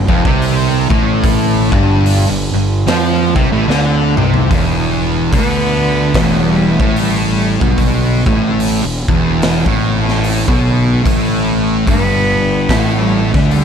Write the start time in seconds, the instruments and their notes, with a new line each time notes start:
0.08 fingered electric bass F1, distorted electric guitar F2, kick
0.24 fingered electric bass C2, distorted electric guitar C3, kick
0.42 open hi-hat
0.89 fingered electric bass A1, distorted electric guitar A2, kick
1.24 kick, open hi-hat
1.72 fingered electric bass G1, distorted electric guitar G2, kick
2.06 open hi-hat
2.29 fingered electric bass G1, distorted electric guitar G2
2.54 fingered electric bass G1, distorted electric guitar G2
2.87 fingered electric bass F2, distorted electric guitar F3, snare, open hi-hat
3.35 fingered electric bass C2, distorted electric guitar C3, kick
3.52 fingered electric bass A1, distorted electric guitar A2
3.68 fingered electric bass D2, distorted electric guitar D3, snare
4.16 fingered electric bass C2, distorted electric guitar C3, mid tom
4.34 floor tom
4.50 fingered electric bass E1, distorted electric guitar E2, kick, open hi-hat
5.32 fingered electric bass D2, distorted electric guitar D3, cello B3, kick, open hi-hat
6.14 fingered electric bass E1, distorted electric guitar E2, cello A3, kick, snare, open hi-hat
6.43 cello G3
6.71 cello A3
6.80 fingered electric bass A1, distorted electric guitar A2, kick
6.96 cello G3, open hi-hat
7.25 cello G3
7.61 fingered electric bass B1, distorted electric guitar B2, kick
7.78 kick, open hi-hat
8.26 fingered electric bass A1, distorted electric guitar A2, kick
8.60 open hi-hat
8.84 fingered electric bass E1, distorted electric guitar E2
9.08 fingered electric bass E1, distorted electric guitar E2, kick
9.42 snare, open hi-hat
9.66 fingered electric bass A1, distorted electric guitar A2, kick
10.08 snare
10.24 open hi-hat
10.48 fingered electric bass B1, distorted electric guitar B2, kick
11.06 fingered electric bass A1, distorted electric guitar A2, kick, open hi-hat
11.87 fingered electric bass G1, distorted electric guitar G2, cello B3, kick, open hi-hat
12.69 fingered electric bass A1, distorted electric guitar A2, cello A3, kick, snare, open hi-hat
12.98 cello G3
13.26 cello A3
13.34 fingered electric bass D2, distorted electric guitar D3, kick, snare
13.51 cello G3, open hi-hat